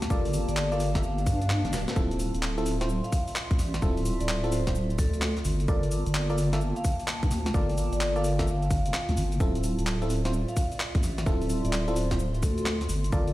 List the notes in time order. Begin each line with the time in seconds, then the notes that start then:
Already playing: A#3 G4 F5 A5
0.02 snare, closed hi-hat, cabasa
0.10 G1 F4 A4 A#4 D5, kick, cabasa
0.25 open hi-hat, cabasa
0.34 open hi-hat, cabasa
0.48 G1 D5, closed hi-hat, cabasa
0.57 clap, cabasa
0.72 F4 A4 A#4 D5 F5, closed hi-hat, cabasa
0.80 open hi-hat, cabasa
0.95 F4 A4 A#4 E5, kick, snare, closed hi-hat, cabasa
1.03 F5, swell, cabasa
1.18 closed hi-hat, cabasa
1.27 G2, kick, open hi-hat, cabasa
1.42 closed hi-hat, cabasa
1.50 clap, snare, cabasa
1.65 G1, snare, closed hi-hat, cabasa
1.73 D1, snare, open hi-hat, cabasa
1.88 snare, closed hi-hat, cabasa
1.96 D1 C4 E4 F4 A4, kick, cabasa
2.11 closed hi-hat, cabasa
2.20 open hi-hat, cabasa
2.26 C6
2.35 D1, closed hi-hat, cabasa
2.39 D5, clap, cabasa
2.58 C4 E4 F4 A4 E5, closed hi-hat, cabasa
2.66 open hi-hat, cabasa
2.81 C4 E4 F4 C5, snare, closed hi-hat, cabasa
2.89 cabasa
3.04 F5, closed hi-hat, cabasa
3.12 kick, open hi-hat, cabasa
3.28 open hi-hat, cabasa
3.36 clap, cabasa
3.51 D2, kick, closed hi-hat, cabasa
3.59 A1, snare, open hi-hat, cabasa
3.74 snare, closed hi-hat, cabasa
3.82 D1 C4 E4 F4 A4, kick, cabasa
3.97 open hi-hat, cabasa
4.05 open hi-hat, cabasa
4.20 D1 D5, closed hi-hat, cabasa
4.29 clap, cabasa
4.44 C4 E4 F4 A4, closed hi-hat, cabasa
4.52 C5, open hi-hat, cabasa
4.67 C4 E4 F4 C5, kick, snare, closed hi-hat, cabasa
4.75 cabasa
4.90 closed hi-hat, cabasa
4.98 D2 A4, kick, open hi-hat, cabasa
5.14 A4, closed hi-hat, cabasa
5.22 clap, snare, cabasa
5.37 snare, closed hi-hat, cabasa
5.45 G1, open hi-hat, cabasa
5.60 closed hi-hat, cabasa
5.68 G1 F4 A4 A#4 D5, kick, cabasa
5.78 A#3 G5
5.83 A5, closed hi-hat, cabasa
5.91 open hi-hat, cabasa
6.06 G1, closed hi-hat, cabasa
6.15 clap, cabasa
6.30 F4 A4 A#4 D5, closed hi-hat, cabasa
6.38 open hi-hat, cabasa
6.53 F4 A4 A#4 E5, snare, closed hi-hat, cabasa
6.61 cabasa
6.76 F5, closed hi-hat, cabasa
6.84 kick, open hi-hat, cabasa
7.00 open hi-hat, cabasa
7.08 clap, cabasa
7.23 G2, kick, closed hi-hat, cabasa
7.31 D2, snare, open hi-hat, cabasa
7.46 snare, closed hi-hat, cabasa
7.54 G1 F4 A4 A#4 D5, kick, cabasa
7.69 open hi-hat, cabasa
7.78 open hi-hat, cabasa
7.93 G1 D5, closed hi-hat, cabasa
8.01 clap, cabasa
8.16 F4 A4 A#4 D5 F5, closed hi-hat, cabasa
8.24 open hi-hat, cabasa
8.39 F4 A4 A#4 E5, kick, snare, closed hi-hat, cabasa
8.47 F5, cabasa
8.62 closed hi-hat, cabasa
8.71 kick, open hi-hat, cabasa
8.86 F1, closed hi-hat, cabasa
8.94 clap, snare, cabasa
9.09 D2, snare, closed hi-hat, cabasa
9.17 G1, open hi-hat, cabasa
9.32 closed hi-hat, cabasa
9.40 D1 C4 E4 F4 A4, kick, cabasa
9.50 D5
9.55 closed hi-hat, cabasa
9.64 open hi-hat, cabasa
9.79 D1 E5, closed hi-hat, cabasa
9.87 clap, cabasa
10.02 C4 E4 F4 A4, closed hi-hat, cabasa
10.10 open hi-hat, cabasa
10.25 C4 E4 F4 C5, snare, closed hi-hat, cabasa
10.33 cabasa
10.48 F5, closed hi-hat, cabasa
10.57 kick, open hi-hat, cabasa
10.72 C6, open hi-hat, cabasa
10.80 clap, cabasa
10.95 D2, kick, closed hi-hat, cabasa
11.03 A1, snare, open hi-hat, cabasa
11.18 snare, closed hi-hat, cabasa
11.26 D1 C4 E4 F4 A4, kick, cabasa
11.42 open hi-hat, cabasa
11.50 open hi-hat, cabasa
11.65 D1 D5, closed hi-hat, cabasa
11.73 clap, cabasa
11.88 C4 E4 F4 A4, closed hi-hat, cabasa
11.96 C5, open hi-hat, cabasa
12.11 C4 E4 F4 C5, kick, snare, closed hi-hat, cabasa
12.19 cabasa
12.34 closed hi-hat, cabasa
12.42 D2 A4, kick, open hi-hat, cabasa
12.58 A4, closed hi-hat, cabasa
12.66 clap, snare, cabasa
12.81 snare, closed hi-hat, cabasa
12.89 G1, open hi-hat, cabasa
12.98 A#3
13.04 closed hi-hat, cabasa
13.12 G1 F4 A4 A#4 D5, kick, cabasa
13.28 closed hi-hat, cabasa